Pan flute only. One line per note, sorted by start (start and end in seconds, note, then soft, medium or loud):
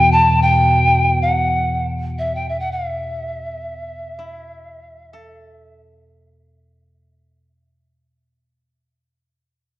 0.00 0.14 G5 medium
0.12 0.44 A5 medium
0.42 1.21 G5 medium
1.22 1.87 F#5 medium
2.18 2.36 E5 medium
2.35 2.50 G5 medium
2.48 2.59 E5 medium
2.59 2.73 F#5 medium
2.71 5.80 E5 medium